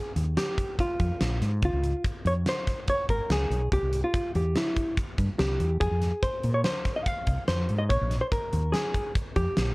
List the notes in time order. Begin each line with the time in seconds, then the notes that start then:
Already playing: G#4
0.16 D#2, closed hi-hat
0.37 G4, snare, closed hi-hat
0.58 kick, closed hi-hat
0.79 F4, kick, closed hi-hat
1.00 F2, kick, closed hi-hat
1.21 A#1, snare, closed hi-hat
1.41 G#2, snare, closed hi-hat
1.62 C#2 F4, kick, closed hi-hat
1.73 C#2
1.84 closed hi-hat
2.04 kick, closed hi-hat
2.25 F2 C#5, closed hi-hat
2.46 C5, snare, closed hi-hat
2.67 kick, snare, closed hi-hat
2.88 C#5, kick, closed hi-hat
3.09 G#1 A#4, kick, closed hi-hat
3.30 C#2 G#4, snare, closed hi-hat
3.50 B1, closed hi-hat
3.72 C2 G4, kick, closed hi-hat
3.83 C2
3.93 closed hi-hat
4.04 F4
4.14 kick, closed hi-hat
4.35 E2 G4, closed hi-hat
4.55 E4, snare, closed hi-hat
4.76 kick, closed hi-hat
4.97 kick, closed hi-hat
5.18 G2, kick, closed hi-hat
5.39 C2 G4, snare, closed hi-hat
5.60 E2, closed hi-hat
5.80 F2 G#4, kick, closed hi-hat
5.91 F2
6.02 snare, closed hi-hat
6.23 C5, kick, closed hi-hat
6.43 A#2, closed hi-hat
6.54 C#5
6.64 C5, snare, closed hi-hat
6.85 kick, snare, closed hi-hat
6.96 D#5
7.06 F5, kick, closed hi-hat
7.27 C2, kick, closed hi-hat
7.48 F2 C5, snare, closed hi-hat
7.69 G#2, closed hi-hat
7.79 D#5
7.89 A#1 C#5, kick, closed hi-hat
8.01 A#1
8.11 snare, closed hi-hat
8.21 C5
8.32 A#4, kick, closed hi-hat
8.53 D#2, closed hi-hat
8.72 G#4, snare, closed hi-hat
8.95 kick, closed hi-hat
9.15 kick, closed hi-hat
9.36 F2 G4, kick, closed hi-hat
9.57 A#1, snare, closed hi-hat